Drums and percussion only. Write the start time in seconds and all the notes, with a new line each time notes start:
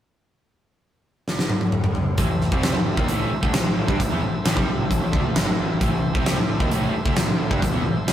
1.28 snare
1.39 snare
1.50 high tom
1.61 high tom
1.72 mid tom
1.84 mid tom
1.95 floor tom
2.18 kick, closed hi-hat
2.41 snare
2.52 kick
2.63 snare, closed hi-hat
2.97 kick
3.08 closed hi-hat
3.43 kick
3.54 snare, closed hi-hat
3.88 kick
4.00 kick, closed hi-hat
4.45 snare, closed hi-hat
4.57 kick
4.91 kick, closed hi-hat
5.13 kick
5.36 snare, closed hi-hat
5.81 kick, closed hi-hat
6.15 kick
6.26 snare, closed hi-hat
6.60 kick
6.71 closed hi-hat
7.06 kick
7.16 snare, closed hi-hat
7.51 kick
7.62 kick, closed hi-hat
8.08 snare, closed hi-hat